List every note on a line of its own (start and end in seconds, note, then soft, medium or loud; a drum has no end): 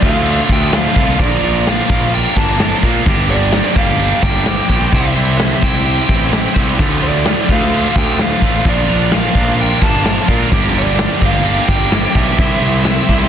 0.00 0.25 D2 loud
0.00 0.39 D2 loud
0.00 0.26 A2 loud
0.00 0.73 A3 medium
0.00 0.74 F4 medium
0.00 kick medium
0.00 crash medium
0.05 0.72 D3 medium
0.05 0.48 F5 medium
0.25 crash medium
0.49 0.85 D2 medium
0.49 0.73 G5 loud
0.49 kick medium
0.49 crash medium
0.72 1.18 A2 medium
0.72 0.97 D3 medium
0.72 0.96 A3 medium
0.72 0.94 F4 medium
0.72 1.21 F5 medium
0.72 snare loud
0.72 crash medium
0.95 1.14 C2 medium
0.95 1.19 D3 medium
0.95 1.19 A3 medium
0.95 1.18 F4 medium
0.95 kick medium
0.95 crash medium
1.18 1.37 A#1 loud
1.18 1.64 A#2 medium
1.18 1.65 F3 medium
1.18 1.45 A#3 loud
1.18 1.44 D4 loud
1.18 1.43 F4 loud
1.18 1.43 A#4 loud
1.18 1.64 D5 medium
1.18 kick loud
1.18 crash medium
1.43 1.79 A#1 medium
1.43 1.66 A#3 medium
1.43 1.67 D4 medium
1.43 1.67 F4 medium
1.43 1.68 A#4 medium
1.43 crash medium
1.65 2.12 A#2 loud
1.65 2.13 F3 loud
1.65 1.92 A#3 loud
1.65 1.91 D4 loud
1.65 1.89 F4 loud
1.65 1.89 A#4 loud
1.65 2.10 F5 loud
1.65 snare loud
1.65 crash medium
1.90 2.25 A#1 loud
1.90 2.58 A#3 medium
1.90 2.59 D4 medium
1.90 2.60 F4 medium
1.90 2.61 A#4 medium
1.90 kick medium
1.90 crash medium
2.14 2.35 G5 loud
2.14 crash medium
2.36 2.72 G1 loud
2.36 2.80 A5 loud
2.36 kick medium
2.36 crash medium
2.59 2.85 A#3 medium
2.59 2.84 D4 medium
2.59 2.84 F4 medium
2.59 2.82 A#4 medium
2.59 snare loud
2.59 crash medium
2.83 3.01 A#2 medium
2.83 3.07 A#3 medium
2.83 3.06 D4 medium
2.83 3.06 F4 medium
2.83 3.05 A#4 medium
2.83 kick medium
2.83 crash medium
3.06 3.60 G1 loud
3.06 3.52 G2 medium
3.06 3.52 D3 loud
3.06 3.32 G3 loud
3.06 3.30 A#3 loud
3.06 3.29 D4 loud
3.06 3.29 G4 loud
3.06 kick loud
3.06 crash medium
3.30 3.54 G3 medium
3.30 3.54 A#3 medium
3.30 3.54 D4 medium
3.30 3.56 G4 medium
3.30 3.73 D5 loud
3.30 crash medium
3.52 3.99 G2 loud
3.52 4.00 D3 medium
3.52 3.79 G3 loud
3.52 3.77 A#3 loud
3.52 3.76 D4 medium
3.52 3.76 G4 loud
3.52 snare loud
3.52 crash medium
3.76 4.12 G1 medium
3.76 4.45 G3 medium
3.76 4.45 A#3 medium
3.76 4.47 D4 medium
3.76 4.47 G4 medium
3.76 4.24 F5 loud
3.76 kick medium
3.76 crash medium
3.99 crash medium
4.23 4.58 G1 medium
4.23 4.95 G5 loud
4.23 kick medium
4.23 crash medium
4.46 4.70 G3 medium
4.46 4.70 A#3 medium
4.46 4.69 D4 medium
4.46 4.67 G4 loud
4.46 snare loud
4.46 crash medium
4.69 4.88 A#1 medium
4.69 4.90 G3 medium
4.69 4.92 A#3 medium
4.69 4.92 D4 medium
4.69 4.91 G4 medium
4.69 kick medium
4.69 crash medium
4.91 5.10 C2 medium
4.91 5.37 C3 medium
4.91 5.38 G3 medium
4.91 5.17 C4 loud
4.91 5.16 E4 loud
4.91 5.15 G4 loud
4.91 5.14 C5 medium
4.91 kick loud
4.91 crash medium
4.95 5.37 E5 loud
5.15 5.52 C2 medium
5.15 5.38 C4 medium
5.15 5.39 E4 medium
5.15 5.40 G4 medium
5.15 5.40 C5 medium
5.15 crash medium
5.38 5.85 C3 medium
5.38 5.86 G3 loud
5.38 5.64 C4 loud
5.38 5.63 E4 loud
5.38 5.63 G4 loud
5.38 5.61 C5 loud
5.38 5.60 E5 loud
5.38 snare loud
5.38 crash medium
5.62 5.98 C2 loud
5.62 6.31 C4 medium
5.62 6.32 E4 medium
5.62 6.33 G4 medium
5.62 6.34 C5 medium
5.62 6.29 G5 loud
5.62 kick medium
5.62 crash medium
5.86 crash medium
6.09 6.45 A1 medium
6.09 kick medium
6.09 crash medium
6.32 6.55 C4 medium
6.32 6.55 E4 medium
6.32 6.54 G4 medium
6.32 6.53 C5 medium
6.32 snare loud
6.32 crash medium
6.54 6.74 C2 medium
6.54 6.78 C4 medium
6.54 6.78 E4 medium
6.54 6.77 G4 medium
6.54 6.77 C5 medium
6.54 kick medium
6.54 crash medium
6.78 7.23 D2 medium
6.78 7.33 D2 loud
6.78 7.24 A2 loud
6.78 7.03 D3 loud
6.78 7.02 A3 loud
6.78 7.01 F4 loud
6.78 kick loud
6.78 crash medium
7.02 7.25 D3 medium
7.02 7.25 A3 medium
7.02 7.27 F4 medium
7.02 7.51 D5 medium
7.02 crash medium
7.25 7.72 D2 medium
7.25 7.72 A2 medium
7.25 7.50 D3 loud
7.25 7.50 A3 loud
7.25 7.49 F4 loud
7.25 snare loud
7.25 crash medium
7.49 7.85 D2 loud
7.49 8.18 D3 medium
7.49 8.19 A3 medium
7.49 8.19 F4 medium
7.49 7.94 F5 medium
7.49 kick medium
7.49 crash medium
7.62 snare soft
7.74 crash medium
7.96 8.31 D2 loud
7.96 8.21 G5 medium
7.96 kick medium
7.96 crash medium
8.18 8.64 A2 medium
8.18 8.43 D3 medium
8.18 8.42 A3 medium
8.18 8.40 F4 medium
8.18 8.68 F5 medium
8.18 snare loud
8.18 crash medium
8.41 8.60 A1 medium
8.41 8.65 D3 medium
8.41 8.64 A3 medium
8.41 8.64 F4 medium
8.41 kick medium
8.41 crash medium
8.64 8.83 A#1 loud
8.64 9.10 A#2 medium
8.64 9.10 F3 loud
8.64 8.91 A#3 medium
8.64 8.90 D4 medium
8.64 8.88 F4 loud
8.64 8.88 A#4 medium
8.64 kick loud
8.64 crash medium
8.69 9.13 D5 medium
8.88 9.25 A#1 loud
8.88 9.12 A#3 medium
8.88 9.12 D4 medium
8.88 9.12 F4 medium
8.88 9.13 A#4 medium
8.88 crash medium
9.11 9.58 A#2 loud
9.11 9.58 F3 loud
9.11 9.36 A#3 loud
9.11 9.35 D4 loud
9.11 9.34 F4 loud
9.11 9.34 A#4 loud
9.11 9.61 F5 loud
9.11 snare loud
9.11 crash medium
9.34 9.71 A#1 loud
9.34 10.03 A#3 medium
9.34 10.04 D4 medium
9.34 10.05 F4 medium
9.34 10.05 A#4 medium
9.34 kick medium
9.34 crash medium
9.59 9.82 G5 loud
9.59 crash medium
9.82 10.18 G1 medium
9.82 10.25 A5 loud
9.82 kick medium
9.82 crash medium
10.04 10.29 A#3 medium
10.04 10.28 D4 medium
10.04 10.28 F4 medium
10.04 10.26 A#4 medium
10.04 snare loud
10.04 crash medium
10.27 10.46 A#2 medium
10.27 10.51 A#3 medium
10.27 10.51 D4 medium
10.27 10.51 F4 medium
10.27 10.50 A#4 medium
10.27 kick medium
10.27 crash medium
10.50 11.06 G1 loud
10.50 10.95 G2 medium
10.50 10.96 D3 loud
10.50 10.76 G3 medium
10.50 10.75 A#3 loud
10.50 10.74 D4 medium
10.50 10.74 G4 loud
10.50 kick loud
10.50 crash loud
10.64 snare soft
10.74 10.97 G3 medium
10.74 10.97 A#3 medium
10.74 10.98 D4 medium
10.74 10.99 G4 medium
10.74 crash medium
10.79 11.20 D5 loud
10.96 11.44 G2 loud
10.96 11.45 D3 loud
10.96 11.23 G3 medium
10.96 11.21 A#3 loud
10.96 11.21 D4 loud
10.96 11.21 G4 loud
10.96 snare loud
10.96 crash medium
11.21 11.57 G1 medium
11.21 11.89 G3 medium
11.21 11.91 A#3 medium
11.21 11.91 D4 medium
11.21 11.92 G4 medium
11.21 11.71 F5 loud
11.21 kick medium
11.21 crash medium
11.45 crash medium
11.68 12.04 G1 medium
11.68 12.17 G5 loud
11.68 kick medium
11.68 crash medium
11.90 12.16 G3 medium
11.90 12.16 A#3 medium
11.90 12.15 D4 medium
11.90 12.14 G4 medium
11.90 snare loud
11.90 crash medium
12.15 12.33 B1 medium
12.15 12.38 G3 medium
12.15 12.38 A#3 medium
12.15 12.38 D4 medium
12.15 12.37 G4 medium
12.15 13.29 E5 medium
12.15 kick medium
12.15 crash medium
12.38 12.56 C2 loud
12.38 12.84 C3 medium
12.38 12.85 G3 medium
12.38 12.63 C4 medium
12.38 12.63 E4 loud
12.38 12.62 G4 loud
12.38 12.60 C5 loud
12.38 kick loud
12.38 crash medium
12.61 12.97 C2 medium
12.61 12.85 C4 medium
12.61 12.86 E4 medium
12.61 12.87 G4 medium
12.61 12.87 C5 medium
12.61 crash medium
12.85 13.29 C3 medium
12.85 13.29 G3 loud
12.85 13.11 C4 loud
12.85 13.10 E4 loud
12.85 13.09 G4 loud
12.85 13.08 C5 loud
12.85 snare loud
12.85 crash medium
13.09 13.29 C2 loud
13.09 13.29 C4 medium
13.09 13.29 E4 medium
13.09 13.29 G4 medium
13.09 13.29 C5 medium
13.09 kick medium
13.09 crash medium
13.22 snare soft